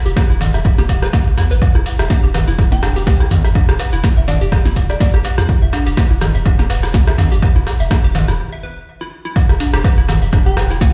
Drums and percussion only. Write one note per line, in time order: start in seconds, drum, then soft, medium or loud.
0.06 shekere medium
0.17 kick loud
0.17 cross-stick medium
0.17 snare medium
0.17 snare loud
0.17 ride medium
0.17 low woodblock medium
0.17 shekere soft
0.41 closed hi-hat medium
0.41 ride medium
0.41 low conga medium
0.41 low woodblock medium
0.41 shekere medium
0.54 cross-stick soft
0.54 shekere medium
0.64 kick loud
0.64 ride medium
0.64 low woodblock soft
0.64 shekere soft
0.78 cross-stick soft
0.78 snare medium
0.78 snare soft
0.89 kick medium
0.89 closed hi-hat medium
0.89 ride medium
0.89 low woodblock medium
0.89 shekere medium
1.02 cross-stick medium
1.02 closed hi-hat soft
1.02 shekere medium
1.13 kick loud
1.13 snare medium
1.13 snare loud
1.13 ride medium
1.13 low woodblock medium
1.13 shekere soft
1.37 cross-stick soft
1.37 closed hi-hat medium
1.37 ride medium
1.37 low woodblock soft
1.37 shekere medium
1.51 shekere soft
1.62 kick loud
1.62 ride medium
1.62 low woodblock medium
1.62 shekere soft
1.75 cross-stick soft
1.86 closed hi-hat medium
1.86 ride medium
1.86 low woodblock soft
1.86 shekere medium
1.99 cross-stick medium
1.99 ride soft
1.99 shekere soft
2.10 kick loud
2.10 snare loud
2.10 snare medium
2.10 ride medium
2.10 low woodblock medium
2.10 shekere soft
2.34 cross-stick soft
2.34 closed hi-hat medium
2.34 ride medium
2.34 low conga medium
2.34 low woodblock medium
2.34 shekere medium
2.48 shekere medium
2.59 kick loud
2.59 cross-stick soft
2.59 ride medium
2.59 low woodblock soft
2.59 shekere soft
2.72 snare medium
2.83 cross-stick medium
2.83 closed hi-hat medium
2.83 ride medium
2.83 low woodblock medium
2.83 shekere medium
2.96 snare soft
2.96 closed hi-hat soft
2.96 shekere medium
3.07 kick loud
3.07 snare medium
3.07 snare loud
3.07 ride medium
3.07 low woodblock medium
3.07 shekere soft
3.20 cross-stick soft
3.20 ride soft
3.31 closed hi-hat medium
3.31 ride medium
3.31 low conga medium
3.31 low woodblock soft
3.31 shekere medium
3.44 cross-stick soft
3.44 shekere soft
3.55 kick loud
3.55 ride medium
3.55 low woodblock medium
3.55 shekere soft
3.69 cross-stick medium
3.79 closed hi-hat medium
3.79 ride medium
3.79 low woodblock medium
3.79 shekere loud
3.93 shekere soft
4.04 kick loud
4.04 cross-stick soft
4.04 snare loud
4.04 snare medium
4.04 ride medium
4.04 low woodblock soft
4.04 shekere soft
4.28 closed hi-hat medium
4.28 ride medium
4.28 low conga medium
4.28 low woodblock medium
4.28 shekere medium
4.42 shekere soft
4.52 kick loud
4.52 cross-stick medium
4.52 ride medium
4.52 low woodblock medium
4.52 shekere soft
4.65 snare medium
4.76 kick medium
4.76 closed hi-hat medium
4.76 ride medium
4.76 low woodblock soft
4.76 shekere medium
4.90 cross-stick soft
4.90 closed hi-hat soft
4.90 shekere soft
5.00 kick loud
5.00 snare loud
5.00 snare medium
5.00 ride medium
5.00 low woodblock medium
5.00 shekere soft
5.14 cross-stick soft
5.24 closed hi-hat medium
5.24 ride medium
5.24 low woodblock medium
5.24 shekere medium
5.38 cross-stick medium
5.38 snare soft
5.38 shekere soft
5.49 kick loud
5.49 ride medium
5.49 low woodblock soft
5.49 shekere soft
5.73 cross-stick soft
5.73 closed hi-hat medium
5.73 ride medium
5.73 low woodblock medium
5.73 shekere medium
5.87 ride soft
5.87 shekere soft
5.97 kick loud
5.97 cross-stick soft
5.97 snare loud
5.97 snare medium
5.97 ride medium
5.97 low woodblock medium
5.97 shekere soft
6.21 cross-stick medium
6.21 closed hi-hat medium
6.21 ride medium
6.21 low conga medium
6.21 low woodblock soft
6.21 shekere medium
6.35 shekere soft
6.46 kick loud
6.46 ride medium
6.46 low woodblock medium
6.46 shekere soft
6.59 cross-stick soft
6.59 snare medium
6.70 snare loud
6.70 closed hi-hat medium
6.70 ride medium
6.70 low woodblock medium
6.70 shekere medium
6.83 cross-stick soft
6.83 snare loud
6.83 closed hi-hat soft
6.83 ride medium
6.83 shekere medium
6.94 kick loud
6.94 snare medium
6.94 snare loud
6.94 ride medium
6.94 low woodblock soft
6.94 shekere soft
7.07 cross-stick medium
7.07 ride soft
7.18 snare loud
7.18 closed hi-hat medium
7.18 ride medium
7.18 low conga medium
7.18 low woodblock medium
7.18 shekere medium
7.32 shekere soft
7.42 kick loud
7.42 cross-stick soft
7.42 ride medium
7.42 low woodblock medium
7.42 shekere soft
7.67 cross-stick soft
7.67 closed hi-hat medium
7.67 ride medium
7.67 low woodblock soft
7.67 shekere medium
7.80 shekere medium
7.91 kick loud
7.91 cross-stick medium
7.91 snare medium
7.91 snare loud
7.91 ride medium
7.91 low woodblock medium
7.91 shekere soft
8.04 closed hi-hat soft
8.15 closed hi-hat medium
8.15 ride medium
8.15 low conga loud
8.15 low woodblock medium
8.15 shekere medium
8.28 cross-stick soft
8.28 shekere soft
9.36 kick loud
9.36 ride medium
9.36 low woodblock medium
9.36 shekere soft
9.49 cross-stick soft
9.49 shekere soft
9.60 closed hi-hat medium
9.60 ride medium
9.60 low woodblock soft
9.60 shekere medium
9.74 cross-stick medium
9.74 ride soft
9.74 shekere soft
9.84 kick loud
9.84 snare loud
9.84 ride medium
9.84 low woodblock medium
9.84 shekere medium
9.98 shekere soft
10.08 cross-stick soft
10.08 closed hi-hat medium
10.08 ride medium
10.08 low conga loud
10.08 low woodblock medium
10.08 shekere medium
10.22 shekere soft
10.33 kick loud
10.33 cross-stick soft
10.33 ride medium
10.33 low woodblock soft
10.33 shekere medium
10.47 shekere soft
10.57 cross-stick medium
10.57 closed hi-hat medium
10.57 ride medium
10.57 low woodblock medium
10.57 shekere medium
10.70 snare medium
10.70 shekere soft
10.81 kick loud
10.81 snare loud
10.81 ride medium
10.81 low woodblock medium
10.81 shekere soft